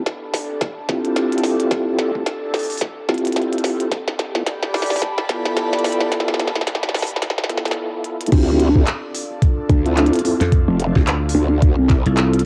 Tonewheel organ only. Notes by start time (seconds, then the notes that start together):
0.89 C4 E4 F4 G4
2.15 C4 E4 F4 G4
3.09 C4 E4 F4 G4
4.35 B3 E4 F4 A4
5.29 B3 E4 F4 A4
6.55 B3 E4 F4 A4
7.49 B3 E4 F4 A4
8.32 C4 E4 F4 G4
8.76 C4 E4 F4 G4
9.86 C4 E4 F4 A4
10.25 C4 E4 F4 A4
10.96 C4 E4 F4 G4
12.06 C4 E4 F4 A4